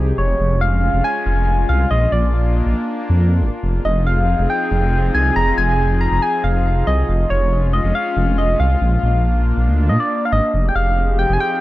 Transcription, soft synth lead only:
0, 0, Header, 1, 2, 480
1, 0, Start_track
1, 0, Key_signature, -4, "minor"
1, 0, Tempo, 431655
1, 200, Time_signature, 4, 2, 24, 8
1, 12906, End_track
2, 0, Start_track
2, 0, Title_t, "Soft synth lead"
2, 0, Program_c, 0, 80
2, 200, Note_on_c, 0, 73, 100
2, 680, Note_on_c, 0, 77, 106
2, 697, Note_off_c, 0, 73, 0
2, 1160, Note_on_c, 0, 80, 115
2, 1177, Note_off_c, 0, 77, 0
2, 1880, Note_on_c, 0, 77, 102
2, 1897, Note_off_c, 0, 80, 0
2, 2113, Note_off_c, 0, 77, 0
2, 2120, Note_on_c, 0, 75, 99
2, 2360, Note_on_c, 0, 74, 88
2, 2377, Note_off_c, 0, 75, 0
2, 2840, Note_off_c, 0, 74, 0
2, 4281, Note_on_c, 0, 75, 95
2, 4521, Note_on_c, 0, 77, 103
2, 4538, Note_off_c, 0, 75, 0
2, 5001, Note_on_c, 0, 79, 109
2, 5018, Note_off_c, 0, 77, 0
2, 5721, Note_on_c, 0, 80, 105
2, 5738, Note_off_c, 0, 79, 0
2, 5954, Note_off_c, 0, 80, 0
2, 5961, Note_on_c, 0, 82, 116
2, 6201, Note_on_c, 0, 80, 116
2, 6218, Note_off_c, 0, 82, 0
2, 6681, Note_on_c, 0, 82, 105
2, 6697, Note_off_c, 0, 80, 0
2, 6920, Note_on_c, 0, 80, 110
2, 6937, Note_off_c, 0, 82, 0
2, 7160, Note_on_c, 0, 77, 105
2, 7177, Note_off_c, 0, 80, 0
2, 7640, Note_on_c, 0, 75, 109
2, 7657, Note_off_c, 0, 77, 0
2, 8120, Note_on_c, 0, 73, 100
2, 8136, Note_off_c, 0, 75, 0
2, 8600, Note_on_c, 0, 75, 91
2, 8617, Note_off_c, 0, 73, 0
2, 8840, Note_on_c, 0, 77, 101
2, 8857, Note_off_c, 0, 75, 0
2, 9320, Note_on_c, 0, 75, 95
2, 9337, Note_off_c, 0, 77, 0
2, 9560, Note_on_c, 0, 77, 103
2, 9576, Note_off_c, 0, 75, 0
2, 10994, Note_off_c, 0, 77, 0
2, 11001, Note_on_c, 0, 75, 95
2, 11120, Note_on_c, 0, 74, 101
2, 11137, Note_off_c, 0, 75, 0
2, 11403, Note_on_c, 0, 77, 80
2, 11419, Note_off_c, 0, 74, 0
2, 11481, Note_on_c, 0, 75, 110
2, 11498, Note_off_c, 0, 77, 0
2, 11883, Note_on_c, 0, 79, 82
2, 11900, Note_off_c, 0, 75, 0
2, 11960, Note_on_c, 0, 77, 116
2, 11977, Note_off_c, 0, 79, 0
2, 12441, Note_on_c, 0, 79, 105
2, 12458, Note_off_c, 0, 77, 0
2, 12596, Note_off_c, 0, 79, 0
2, 12603, Note_on_c, 0, 80, 84
2, 12681, Note_on_c, 0, 79, 122
2, 12698, Note_off_c, 0, 80, 0
2, 12906, Note_off_c, 0, 79, 0
2, 12906, End_track
0, 0, End_of_file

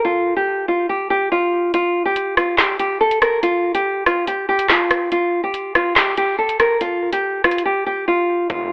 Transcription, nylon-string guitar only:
0, 0, Header, 1, 2, 480
1, 0, Start_track
1, 0, Tempo, 422535
1, 56, Time_signature, 4, 2, 24, 8
1, 9912, End_track
2, 0, Start_track
2, 0, Title_t, "Nylon-string guitar"
2, 0, Program_c, 0, 24
2, 53, Note_on_c, 0, 65, 102
2, 393, Note_off_c, 0, 65, 0
2, 414, Note_on_c, 0, 67, 71
2, 753, Note_off_c, 0, 67, 0
2, 775, Note_on_c, 0, 65, 70
2, 973, Note_off_c, 0, 65, 0
2, 1014, Note_on_c, 0, 67, 77
2, 1213, Note_off_c, 0, 67, 0
2, 1252, Note_on_c, 0, 67, 85
2, 1451, Note_off_c, 0, 67, 0
2, 1495, Note_on_c, 0, 65, 89
2, 1947, Note_off_c, 0, 65, 0
2, 1975, Note_on_c, 0, 65, 102
2, 2314, Note_off_c, 0, 65, 0
2, 2334, Note_on_c, 0, 67, 83
2, 2673, Note_off_c, 0, 67, 0
2, 2693, Note_on_c, 0, 65, 74
2, 2892, Note_off_c, 0, 65, 0
2, 2933, Note_on_c, 0, 67, 88
2, 3132, Note_off_c, 0, 67, 0
2, 3173, Note_on_c, 0, 67, 79
2, 3372, Note_off_c, 0, 67, 0
2, 3415, Note_on_c, 0, 69, 92
2, 3613, Note_off_c, 0, 69, 0
2, 3654, Note_on_c, 0, 70, 91
2, 3852, Note_off_c, 0, 70, 0
2, 3894, Note_on_c, 0, 65, 105
2, 4233, Note_off_c, 0, 65, 0
2, 4254, Note_on_c, 0, 67, 86
2, 4593, Note_off_c, 0, 67, 0
2, 4615, Note_on_c, 0, 65, 77
2, 4813, Note_off_c, 0, 65, 0
2, 4857, Note_on_c, 0, 67, 88
2, 5054, Note_off_c, 0, 67, 0
2, 5098, Note_on_c, 0, 67, 89
2, 5294, Note_off_c, 0, 67, 0
2, 5335, Note_on_c, 0, 65, 83
2, 5787, Note_off_c, 0, 65, 0
2, 5815, Note_on_c, 0, 65, 94
2, 6153, Note_off_c, 0, 65, 0
2, 6175, Note_on_c, 0, 67, 84
2, 6514, Note_off_c, 0, 67, 0
2, 6537, Note_on_c, 0, 65, 71
2, 6734, Note_off_c, 0, 65, 0
2, 6776, Note_on_c, 0, 67, 77
2, 6973, Note_off_c, 0, 67, 0
2, 7015, Note_on_c, 0, 67, 76
2, 7213, Note_off_c, 0, 67, 0
2, 7253, Note_on_c, 0, 69, 91
2, 7452, Note_off_c, 0, 69, 0
2, 7496, Note_on_c, 0, 70, 92
2, 7694, Note_off_c, 0, 70, 0
2, 7734, Note_on_c, 0, 65, 105
2, 8073, Note_off_c, 0, 65, 0
2, 8096, Note_on_c, 0, 67, 76
2, 8434, Note_off_c, 0, 67, 0
2, 8455, Note_on_c, 0, 65, 72
2, 8653, Note_off_c, 0, 65, 0
2, 8696, Note_on_c, 0, 67, 80
2, 8894, Note_off_c, 0, 67, 0
2, 8933, Note_on_c, 0, 67, 86
2, 9132, Note_off_c, 0, 67, 0
2, 9176, Note_on_c, 0, 65, 90
2, 9627, Note_off_c, 0, 65, 0
2, 9654, Note_on_c, 0, 65, 95
2, 9912, Note_off_c, 0, 65, 0
2, 9912, End_track
0, 0, End_of_file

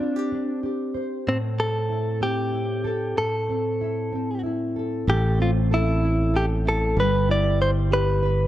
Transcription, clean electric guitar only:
0, 0, Header, 1, 2, 480
1, 0, Start_track
1, 0, Key_signature, 0, "minor"
1, 0, Tempo, 631579
1, 964, Time_signature, 6, 3, 24, 8
1, 6441, End_track
2, 0, Start_track
2, 0, Title_t, "Clean electric guitar"
2, 0, Program_c, 0, 27
2, 0, Note_on_c, 0, 62, 65
2, 452, Note_off_c, 0, 62, 0
2, 977, Note_on_c, 0, 60, 78
2, 1040, Note_off_c, 0, 60, 0
2, 1215, Note_on_c, 0, 69, 83
2, 1690, Note_off_c, 0, 69, 0
2, 1693, Note_on_c, 0, 67, 90
2, 2414, Note_off_c, 0, 67, 0
2, 2417, Note_on_c, 0, 69, 75
2, 3350, Note_off_c, 0, 69, 0
2, 3873, Note_on_c, 0, 67, 87
2, 4089, Note_off_c, 0, 67, 0
2, 4118, Note_on_c, 0, 65, 85
2, 4180, Note_off_c, 0, 65, 0
2, 4362, Note_on_c, 0, 64, 94
2, 4837, Note_on_c, 0, 67, 96
2, 4845, Note_off_c, 0, 64, 0
2, 4900, Note_off_c, 0, 67, 0
2, 5081, Note_on_c, 0, 69, 84
2, 5316, Note_off_c, 0, 69, 0
2, 5319, Note_on_c, 0, 71, 106
2, 5555, Note_off_c, 0, 71, 0
2, 5558, Note_on_c, 0, 74, 98
2, 5785, Note_off_c, 0, 74, 0
2, 5788, Note_on_c, 0, 72, 98
2, 5851, Note_off_c, 0, 72, 0
2, 6030, Note_on_c, 0, 71, 102
2, 6441, Note_off_c, 0, 71, 0
2, 6441, End_track
0, 0, End_of_file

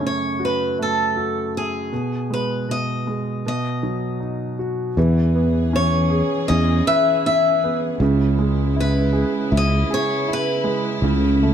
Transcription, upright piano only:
0, 0, Header, 1, 2, 480
1, 0, Start_track
1, 0, Key_signature, 4, "major"
1, 0, Tempo, 759494
1, 1209, Time_signature, 4, 2, 24, 8
1, 7293, End_track
2, 0, Start_track
2, 0, Title_t, "Upright piano"
2, 0, Program_c, 0, 0
2, 0, Control_c, 0, 64, 127
2, 0, Note_on_c, 0, 42, 55
2, 0, Note_on_c, 0, 49, 43
2, 0, Note_on_c, 0, 57, 40
2, 6, Note_on_c, 0, 61, 43
2, 250, Note_on_c, 0, 66, 48
2, 465, Note_off_c, 0, 49, 0
2, 491, Note_off_c, 0, 57, 0
2, 500, Note_on_c, 0, 57, 47
2, 726, Note_off_c, 0, 66, 0
2, 735, Note_on_c, 0, 66, 43
2, 942, Note_off_c, 0, 61, 0
2, 1185, Note_off_c, 0, 42, 0
2, 1193, Note_off_c, 0, 57, 0
2, 1198, Note_off_c, 0, 66, 0
2, 1217, Control_c, 0, 64, 0
2, 1217, Note_on_c, 0, 47, 50
2, 1330, Control_c, 0, 64, 127
2, 1456, Note_on_c, 0, 56, 43
2, 1688, Note_off_c, 0, 47, 0
2, 1698, Note_on_c, 0, 47, 41
2, 1931, Note_off_c, 0, 56, 0
2, 1940, Note_on_c, 0, 56, 42
2, 2162, Note_off_c, 0, 47, 0
2, 2170, Note_off_c, 0, 56, 0
2, 2180, Control_c, 0, 64, 0
2, 2188, Note_on_c, 0, 47, 54
2, 2284, Control_c, 0, 64, 127
2, 2421, Note_on_c, 0, 54, 45
2, 2655, Note_on_c, 0, 63, 35
2, 2901, Note_on_c, 0, 66, 41
2, 3122, Note_off_c, 0, 54, 0
2, 3123, Note_off_c, 0, 47, 0
2, 3125, Note_off_c, 0, 63, 0
2, 3134, Note_off_c, 0, 66, 0
2, 3148, Note_on_c, 0, 52, 65
2, 3149, Control_c, 0, 64, 0
2, 3256, Control_c, 0, 64, 127
2, 3381, Note_on_c, 0, 59, 51
2, 3623, Note_on_c, 0, 61, 52
2, 3856, Note_on_c, 0, 68, 52
2, 4097, Note_off_c, 0, 61, 0
2, 4106, Note_on_c, 0, 61, 56
2, 4317, Note_off_c, 0, 59, 0
2, 4346, Note_on_c, 0, 71, 62
2, 4583, Note_off_c, 0, 61, 0
2, 4593, Note_on_c, 0, 61, 48
2, 4793, Note_off_c, 0, 68, 0
2, 4828, Note_on_c, 0, 59, 55
2, 5040, Note_off_c, 0, 52, 0
2, 5041, Note_off_c, 0, 71, 0
2, 5052, Note_off_c, 0, 61, 0
2, 5057, Note_off_c, 0, 59, 0
2, 5063, Note_on_c, 0, 49, 70
2, 5070, Control_c, 0, 64, 0
2, 5172, Control_c, 0, 64, 127
2, 5299, Note_on_c, 0, 56, 55
2, 5538, Note_on_c, 0, 64, 53
2, 5770, Note_on_c, 0, 68, 52
2, 6006, Note_off_c, 0, 64, 0
2, 6015, Note_on_c, 0, 64, 57
2, 6230, Note_off_c, 0, 56, 0
2, 6250, Note_off_c, 0, 68, 0
2, 6259, Note_on_c, 0, 68, 60
2, 6488, Note_off_c, 0, 64, 0
2, 6498, Note_on_c, 0, 64, 51
2, 6723, Note_on_c, 0, 56, 51
2, 6948, Note_off_c, 0, 49, 0
2, 6953, Note_off_c, 0, 68, 0
2, 6960, Note_off_c, 0, 56, 0
2, 6960, Note_off_c, 0, 64, 0
2, 6973, Note_on_c, 0, 49, 70
2, 6980, Control_c, 0, 64, 0
2, 7096, Control_c, 0, 64, 127
2, 7222, Note_on_c, 0, 57, 57
2, 7293, Note_off_c, 0, 49, 0
2, 7293, Note_off_c, 0, 57, 0
2, 7293, End_track
0, 0, End_of_file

